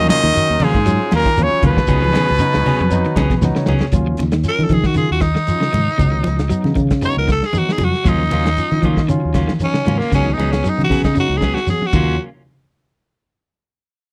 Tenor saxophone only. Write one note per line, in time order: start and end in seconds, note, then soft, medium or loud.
4.48 4.65 A#4 loud
4.63 4.75 A4 medium
4.73 4.87 G#4 medium
4.86 4.96 F#4 medium
4.97 5.10 G#4 medium
5.12 5.23 F#4 medium
5.21 6.73 D#4 loud
7.05 7.17 C#5 loud
7.18 7.29 A#4 medium
7.32 7.47 A4 medium
7.46 7.59 G#4 medium
7.58 7.74 F#4 medium
7.72 7.86 G#4 medium
7.84 8.10 F#4 medium
8.09 9.07 D#4 loud
9.64 10.00 C#4 medium
9.98 10.14 A#3 medium
10.15 10.34 C#4 medium
10.33 10.53 D#4 medium
10.52 10.70 C#4 medium
10.69 10.83 D#4 medium
10.84 10.99 F#4 medium
11.04 11.18 D#4 medium
11.20 11.39 F#4 loud
11.37 11.56 G#4 medium
11.54 11.69 F#4 loud
11.70 11.88 G#4 medium
11.86 12.19 F#4 loud